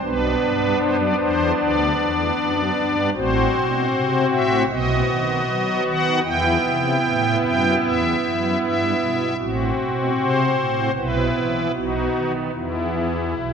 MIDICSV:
0, 0, Header, 1, 2, 480
1, 0, Start_track
1, 0, Key_signature, 1, "minor"
1, 0, Tempo, 780234
1, 14, Time_signature, 4, 2, 24, 8
1, 6733, Tempo, 809717
1, 8266, End_track
2, 0, Start_track
2, 0, Title_t, "Pipe organ"
2, 0, Program_c, 0, 19
2, 12, Note_on_c, 0, 62, 53
2, 13, Note_on_c, 0, 47, 77
2, 15, Note_on_c, 0, 59, 49
2, 16, Note_on_c, 0, 35, 69
2, 16, Note_on_c, 0, 71, 103
2, 217, Note_off_c, 0, 47, 0
2, 219, Note_off_c, 0, 35, 0
2, 247, Note_on_c, 0, 43, 71
2, 455, Note_off_c, 0, 43, 0
2, 482, Note_off_c, 0, 71, 0
2, 489, Note_on_c, 0, 72, 119
2, 492, Note_on_c, 0, 42, 76
2, 594, Note_off_c, 0, 72, 0
2, 609, Note_on_c, 0, 74, 86
2, 698, Note_off_c, 0, 42, 0
2, 714, Note_off_c, 0, 74, 0
2, 729, Note_on_c, 0, 40, 69
2, 730, Note_on_c, 0, 72, 95
2, 936, Note_off_c, 0, 40, 0
2, 936, Note_off_c, 0, 72, 0
2, 972, Note_on_c, 0, 74, 107
2, 975, Note_on_c, 0, 38, 73
2, 1179, Note_off_c, 0, 38, 0
2, 1214, Note_on_c, 0, 40, 69
2, 1419, Note_off_c, 0, 40, 0
2, 1461, Note_on_c, 0, 42, 78
2, 1663, Note_off_c, 0, 42, 0
2, 1700, Note_on_c, 0, 43, 68
2, 1901, Note_off_c, 0, 43, 0
2, 1907, Note_off_c, 0, 74, 0
2, 1909, Note_off_c, 0, 62, 0
2, 1910, Note_off_c, 0, 59, 0
2, 1934, Note_on_c, 0, 72, 113
2, 1935, Note_on_c, 0, 66, 52
2, 1936, Note_on_c, 0, 33, 78
2, 1938, Note_on_c, 0, 45, 77
2, 1938, Note_on_c, 0, 60, 49
2, 2136, Note_off_c, 0, 33, 0
2, 2137, Note_off_c, 0, 45, 0
2, 2179, Note_on_c, 0, 47, 69
2, 2376, Note_off_c, 0, 47, 0
2, 2412, Note_on_c, 0, 48, 78
2, 2611, Note_off_c, 0, 48, 0
2, 2623, Note_off_c, 0, 72, 0
2, 2649, Note_on_c, 0, 76, 106
2, 2650, Note_on_c, 0, 45, 71
2, 2849, Note_off_c, 0, 76, 0
2, 2850, Note_off_c, 0, 45, 0
2, 2858, Note_off_c, 0, 66, 0
2, 2860, Note_off_c, 0, 60, 0
2, 2886, Note_on_c, 0, 66, 55
2, 2887, Note_on_c, 0, 35, 80
2, 2887, Note_on_c, 0, 59, 55
2, 2889, Note_on_c, 0, 75, 98
2, 2892, Note_on_c, 0, 47, 81
2, 3089, Note_off_c, 0, 35, 0
2, 3092, Note_off_c, 0, 47, 0
2, 3126, Note_on_c, 0, 51, 64
2, 3330, Note_off_c, 0, 51, 0
2, 3360, Note_on_c, 0, 54, 77
2, 3568, Note_off_c, 0, 54, 0
2, 3589, Note_off_c, 0, 75, 0
2, 3607, Note_on_c, 0, 78, 111
2, 3609, Note_on_c, 0, 51, 70
2, 3811, Note_off_c, 0, 78, 0
2, 3812, Note_off_c, 0, 51, 0
2, 3825, Note_off_c, 0, 59, 0
2, 3825, Note_off_c, 0, 66, 0
2, 3833, Note_on_c, 0, 52, 81
2, 3836, Note_on_c, 0, 40, 73
2, 3836, Note_on_c, 0, 79, 118
2, 3837, Note_on_c, 0, 59, 53
2, 3838, Note_on_c, 0, 64, 51
2, 4041, Note_off_c, 0, 52, 0
2, 4043, Note_off_c, 0, 40, 0
2, 4089, Note_on_c, 0, 48, 62
2, 4290, Note_off_c, 0, 48, 0
2, 4322, Note_on_c, 0, 45, 81
2, 4528, Note_off_c, 0, 45, 0
2, 4538, Note_off_c, 0, 79, 0
2, 4563, Note_on_c, 0, 42, 66
2, 4563, Note_on_c, 0, 79, 104
2, 4769, Note_off_c, 0, 42, 0
2, 4769, Note_off_c, 0, 79, 0
2, 4810, Note_on_c, 0, 40, 64
2, 4813, Note_on_c, 0, 76, 100
2, 5014, Note_off_c, 0, 40, 0
2, 5057, Note_on_c, 0, 42, 57
2, 5259, Note_off_c, 0, 42, 0
2, 5279, Note_off_c, 0, 76, 0
2, 5292, Note_on_c, 0, 43, 63
2, 5293, Note_on_c, 0, 76, 89
2, 5497, Note_off_c, 0, 43, 0
2, 5534, Note_on_c, 0, 47, 55
2, 5738, Note_off_c, 0, 47, 0
2, 5744, Note_off_c, 0, 59, 0
2, 5745, Note_off_c, 0, 64, 0
2, 5761, Note_off_c, 0, 76, 0
2, 5774, Note_on_c, 0, 45, 63
2, 5774, Note_on_c, 0, 66, 47
2, 5775, Note_on_c, 0, 33, 68
2, 5777, Note_on_c, 0, 60, 43
2, 5977, Note_off_c, 0, 45, 0
2, 5978, Note_off_c, 0, 33, 0
2, 6015, Note_on_c, 0, 47, 56
2, 6217, Note_off_c, 0, 47, 0
2, 6253, Note_on_c, 0, 48, 65
2, 6255, Note_on_c, 0, 72, 101
2, 6455, Note_off_c, 0, 48, 0
2, 6494, Note_on_c, 0, 45, 52
2, 6697, Note_off_c, 0, 45, 0
2, 6706, Note_off_c, 0, 66, 0
2, 6708, Note_off_c, 0, 60, 0
2, 6718, Note_off_c, 0, 72, 0
2, 6742, Note_on_c, 0, 47, 54
2, 6742, Note_on_c, 0, 64, 44
2, 6742, Note_on_c, 0, 71, 90
2, 6743, Note_on_c, 0, 35, 58
2, 6743, Note_on_c, 0, 59, 40
2, 6936, Note_off_c, 0, 35, 0
2, 6936, Note_off_c, 0, 47, 0
2, 6973, Note_on_c, 0, 52, 49
2, 7170, Note_off_c, 0, 52, 0
2, 7189, Note_off_c, 0, 59, 0
2, 7192, Note_off_c, 0, 64, 0
2, 7192, Note_off_c, 0, 71, 0
2, 7201, Note_on_c, 0, 59, 39
2, 7203, Note_on_c, 0, 47, 52
2, 7203, Note_on_c, 0, 66, 69
2, 7204, Note_on_c, 0, 35, 48
2, 7205, Note_on_c, 0, 63, 40
2, 7405, Note_off_c, 0, 35, 0
2, 7405, Note_off_c, 0, 47, 0
2, 7442, Note_on_c, 0, 51, 50
2, 7546, Note_off_c, 0, 63, 0
2, 7550, Note_off_c, 0, 66, 0
2, 7558, Note_on_c, 0, 63, 64
2, 7646, Note_off_c, 0, 51, 0
2, 7662, Note_off_c, 0, 63, 0
2, 7663, Note_off_c, 0, 59, 0
2, 7675, Note_on_c, 0, 59, 39
2, 7676, Note_on_c, 0, 52, 49
2, 7677, Note_on_c, 0, 64, 65
2, 7678, Note_on_c, 0, 40, 45
2, 8151, Note_off_c, 0, 52, 0
2, 8151, Note_off_c, 0, 59, 0
2, 8152, Note_off_c, 0, 40, 0
2, 8161, Note_on_c, 0, 35, 51
2, 8164, Note_on_c, 0, 47, 57
2, 8266, Note_off_c, 0, 35, 0
2, 8266, Note_off_c, 0, 47, 0
2, 8266, Note_off_c, 0, 64, 0
2, 8266, End_track
0, 0, End_of_file